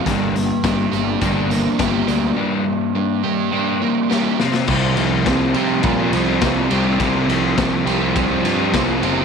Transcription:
<<
  \new Staff \with { instrumentName = "Overdriven electric guitar" } { \time 4/4 \key c \dorian \tempo 4 = 104 g,4 d'8 g'8 d'8 bes8 g'8 d'8 | g,4 d'8 g'8 d'8 bes8 g'8 c8 | c8 f8 c'8 g'8 c'8 f'8 c'8 g'8 | c8 f8 c'8 g'8 c'8 f'8 c'8 g'8 | }
  \new Staff \with { instrumentName = "Overdriven electric guitar" } { \time 4/4 \key c \dorian <g bes d'>8 <g bes>8 <g bes>8 <g bes>8 <g bes d'>8 <g bes>8 <g bes>8 <g bes>8 | <g bes d'>8 <g bes>8 <g bes>8 <g bes>8 <g bes d'>8 <g bes>8 <g bes>8 <f c' f'>8 | <g c' f'>8 <g c' f'>16 <c' f'>16 <g c' f'>16 <c' f'>16 <g c' f'>16 <c' f'>8 <c' f'>8 <c' f'>16 <g c' f'>8 <g c' f'>16 <c' f'>16 | <g c' f'>8 <g c' f'>16 <c' f'>16 <g c' f'>16 <c' f'>16 <g c' f'>16 <c' f'>8 <c' f'>8 <c' f'>16 <g c' f'>8 <g c' f'>16 <c' f'>16 | }
  \new Staff \with { instrumentName = "Picked electric bass" } { \clef bass \time 4/4 \key c \dorian g,,4 g,,8 g,,8 g,,4 g,,8 d,8 | r1 | c,8 c,8 c,8 c8 bes,8 c,8 c,8 c,8 | c,8 c,8 c,8 c,8 c,8 g,8 c,8 fis,,8 | }
  \new DrumStaff \with { instrumentName = "Drums" } \drummode { \time 4/4 <hh bd>8 hh8 <hh bd sn>8 hh8 <hh bd>8 hh8 <hh bd sn>8 hh8 | r4 r4 r4 sn8 sn16 sn16 | <cymc bd>8 cymr8 <bd cymr sn>8 cymr8 <bd cymr>8 cymr8 <bd cymr sn>8 cymr8 | <bd cymr>8 cymr8 <bd cymr sn>8 <cymr sn>8 <bd cymr>8 cymr8 <bd cymr sn>8 cymr8 | }
>>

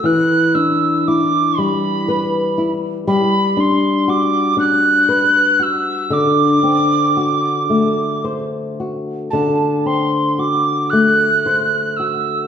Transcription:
<<
  \new Staff \with { instrumentName = "Tin whistle" } { \time 6/8 \key d \mixolydian \tempo 4. = 39 fis'''8 e'''8 d'''8 b''4 r8 | b''8 c'''8 d'''8 fis'''4 e'''8 | d'''2 r4 | a''8 c'''8 d'''8 fis'''4 e'''8 | }
  \new Staff \with { instrumentName = "Nylon-string guitar" } { \time 6/8 \key d \mixolydian e8 d'8 e'8 g8 b'8 e'8 | g8 d'8 fis'8 d'8 b'8 fis'8 | d8 c'8 fis'8 a8 c''8 fis'8 | d8 c'8 fis'8 a8 c''8 fis'8 | }
>>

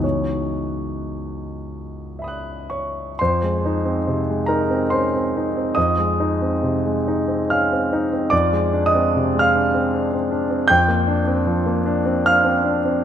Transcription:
<<
  \new Staff \with { instrumentName = "Grand piano" } { \time 3/4 \key cis \minor \tempo 4 = 71 << { cis''2~ cis''8 <cis'' cis'''>8 | \key f \minor <c'' c'''>4. <bes' bes''>8 <c'' c'''>4 | <ees'' ees'''>2 <f'' f'''>8 r8 | \tuplet 3/2 { <d'' d'''>4 <ees'' ees'''>8~ <ees'' ees'''>8 <f'' f'''>4~ } <f'' f'''>4 |
<g'' g'''>2 <f'' f'''>4 | } \\ { r2 <e'' b'' dis''' fis'''>4 | f,16 aes16 ees'16 c'16 c16 aes16 ees'16 c'16 des'16 c'16 ees'16 c'16 | f,16 aes16 ees'16 c'16 c16 aes16 ees'16 c'16 des'16 c'16 ees'16 c'16 | f,16 aes16 d'16 c'16 c16 aes16 d'16 c'16 d'16 c'16 d'16 c'16 |
f,16 bes16 d'16 c'16 f16 bes16 d'16 c'16 d'16 c'16 d'16 c'16 | } >> }
  \new Staff \with { instrumentName = "Grand piano" } { \time 3/4 \key cis \minor <cis, e b dis' fis'>2. | \key f \minor r2. | r2. | r2. |
r2. | }
>>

